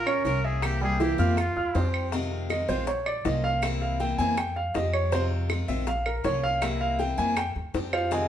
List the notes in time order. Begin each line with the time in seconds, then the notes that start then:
Already playing: A#1 A#4
0.06 C#4 C#5 C#6, high bongo, claves
0.25 C2 F3 A#3 C#4 F4 A#4, high bongo, low bongo
0.45 G#4 E5
0.62 C3 E3 A#3 C4 E4 G4, high bongo, claves
0.81 G3 G4 G#4 G5, high bongo
1.00 E3 A#3 C4 E4 G4 E5, high bongo
1.18 F2 E3 A#3 C4 E4 F4 F5 F6, high bongo
1.37 F4, muted steel-string acoustic guitar stroke, high bongo, claves
1.56 D#2 F4 F5 F6, high bongo
1.75 F2 F3 G3 C4 G4 C5 C6, high bongo, low bongo
1.94 claves
2.12 C3 D#3 G#3 C4 F4, high bongo
2.31 high bongo
2.50 D#3 G#3 C4 F4 D#5, high bongo, claves
2.68 A#1 D#3 G#3 C4 F4 C5
2.87 C#5, muted steel-string acoustic guitar stroke, high bongo
3.06 D5, high bongo, claves
3.25 C2 F3 A#3 C#4 F4 D#5, high bongo, low bongo
3.44 F5, high bongo
3.62 C3 E3 A#3 C4 E4 E5, high bongo, claves
3.82 F5, high bongo
4.00 E3 A#3 C4 E4 G5, high bongo
4.18 F2 E3 A#3 C4 E4 G#5
4.37 G5, muted steel-string acoustic guitar stroke, high bongo, claves
4.56 F5, high bongo
4.74 F2 F3 G3 C4 G4 D#5, high bongo, low bongo
4.93 C#5, high bongo, claves
5.12 C3 D#3 G#3 C4 F4 C5, high bongo
5.31 high bongo
5.49 D#3 G#3 C4 F4, high bongo, claves
5.68 A#1 D#3 G#3 C4 F4 E5
5.87 F5, muted steel-string acoustic guitar stroke, high bongo
6.06 A#4, high bongo, claves
6.24 C2 F3 A#3 C#4 F4 C#5, high bongo, low bongo
6.43 F5, high bongo
6.62 C3 E3 A#3 C4 E4 E5, high bongo, claves
6.81 F5, high bongo
6.99 E3 A#3 C4 E4 G5, high bongo
7.18 F2 E3 A#3 C4 E4 G#5
7.36 G5, muted steel-string acoustic guitar stroke, high bongo, claves
7.55 D#2, high bongo
7.74 F2 F3 G3 C4 G4, high bongo, low bongo
7.93 F4 C5 F5, high bongo, claves
8.11 C3 D#3 G#3 C4 F4 G#4 D#5 F5 G#5, high bongo